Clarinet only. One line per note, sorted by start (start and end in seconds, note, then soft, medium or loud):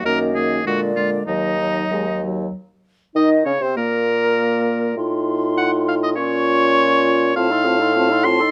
0.05 0.34 A#3 medium
0.35 0.65 A#3 medium
0.65 0.95 G#3 medium
0.96 1.26 G#3 medium
1.26 1.58 F#3 soft
1.59 2.21 F#3 soft
2.23 2.53 F#3 soft
3.16 3.44 D#4 medium
3.46 3.53 C#4 medium
3.61 3.77 C4 medium
3.76 4.96 A#3 medium
4.97 6.13 F4 medium
6.16 7.34 F4 medium
7.35 7.52 F4 medium
7.50 7.66 A4 medium
7.65 7.81 F4 medium
7.80 7.95 A4 medium
7.95 8.11 F4 medium
8.10 8.26 A4 medium
8.24 8.42 F4 medium
8.40 8.51 A4 medium